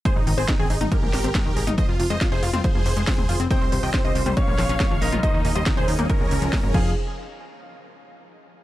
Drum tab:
CC |----------------|----------------|----------------|--------------x-|
HH |x-oox-oxx-oxx-ox|x-oxx-oxx-oxo-ox|x-oo--oxx-oxx-ox|x-oxx-oxx-oxo---|
SD |----o-----o-o---|----o-------o---|----o-----o-o---|----o-------o---|
T2 |-------o-o--o--o|-------o-o--oo--|-------o-o--o--o|-------o-o--oo--|
BD |o---o---o---o---|o---o---o---o---|o---o---o---o---|o---o---o---o-o-|

CC |----------------|
HH |----------------|
SD |----------------|
T2 |----------------|
BD |----------------|